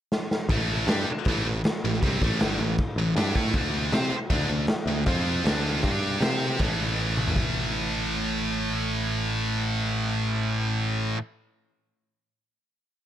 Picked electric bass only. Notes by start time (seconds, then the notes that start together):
0.49 A1
0.87 G2
1.05 muted picked electric bass stroke
1.26 A1
1.44 A1
1.84 A1
2.02 C2
2.21 A1
2.41 G1
2.59 A1
2.96 A1
3.16 G2
3.35 A2
3.54 D2
3.92 C3
4.11 muted picked electric bass stroke
4.30 D2
4.48 D2
4.86 D2
5.06 F2
5.44 D2
5.83 G2
6.21 C3
6.59 A1